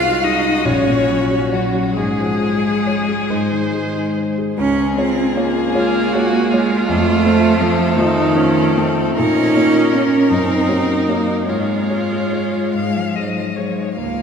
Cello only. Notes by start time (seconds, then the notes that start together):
Already playing: F4
0.24 D#4
0.65 C#4
1.51 F#3
1.97 G#3
4.58 C#4
4.96 C4
5.35 A#3
6.52 G#3
6.89 A3
7.60 F3
7.96 D#3
9.18 D#4
9.93 C#4
10.30 C4
11.07 A#3
11.48 G#3
12.96 F3
13.15 F#3
13.37 F3
13.57 F#3
13.79 G#3
13.98 A#3